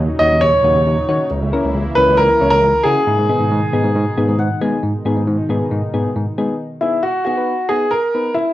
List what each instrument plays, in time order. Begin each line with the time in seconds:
Already playing: analog synth pad A#2 C#3 F#3 D#4
0.19 tine electric piano D#2, synth keys D#4 F#4 C#5, grand piano D#5
0.31 tine electric piano D#2
0.41 tine electric piano D#2, grand piano C#5
0.64 tine electric piano D#2, synth keys D#4 F#4 C#5
0.75 tine electric piano D#2
0.86 tine electric piano D#2
1.08 tine electric piano D#3, synth keys D#4 F#4 C#5
1.31 tine electric piano C#2, analog synth pad E3 A#3 E4
1.42 tine electric piano C#2
1.53 synth keys C#4 E4 A#4
1.64 tine electric piano C#2
1.75 tine electric piano C#2
1.95 tine electric piano C#2, synth keys C#4 E4 A#4, grand piano B4
2.08 tine electric piano C#2
2.17 tine electric piano C#2, grand piano A#4
2.41 tine electric piano C#2, synth keys C#4 E4 C#5
2.50 tine electric piano C#2, grand piano A#4
2.63 tine electric piano C#2
2.83 tine electric piano C#3, synth keys C#4 E4 F#4, grand piano G#4
3.07 tine electric piano G#2, analog synth pad B2 D#3 G#3 D#4
3.18 tine electric piano G#2
3.29 synth keys B3 D#4 G#4
3.40 tine electric piano G#2
3.51 tine electric piano G#2
3.73 tine electric piano G#2, synth keys B3 D#4 G#4
3.84 tine electric piano G#2
3.95 tine electric piano G#2
4.17 tine electric piano G#2, synth keys B3 D#4 G#4
4.28 tine electric piano G#2
4.39 tine electric piano G#2, synth keys F#5
4.61 tine electric piano G#3, synth keys B3 D#4 G#4 G#5
4.84 tine electric piano G#2, analog synth pad B2 D#3 G#3 D#4
5.06 tine electric piano G#2, synth keys B3 D#4 G#4
5.17 tine electric piano G#2
5.28 tine electric piano G#2
5.50 tine electric piano G#2, synth keys B3 D#4 G#4
5.72 tine electric piano G#2
5.94 tine electric piano G#2, synth keys B3 D#4 G#4
6.16 tine electric piano G#2
6.38 tine electric piano G#3, synth keys B3 D#4 G#4
6.81 synth keys B3 D#4 G#4, grand piano E4
7.03 grand piano F#4
7.25 synth keys B3 D#4 G#4, grand piano F#4
7.37 synth keys B3 D#4 B4
7.69 synth keys B3 D#4 G#4, grand piano G#4
7.91 grand piano A#4
8.15 synth keys B3 D#4 B4
8.34 grand piano E4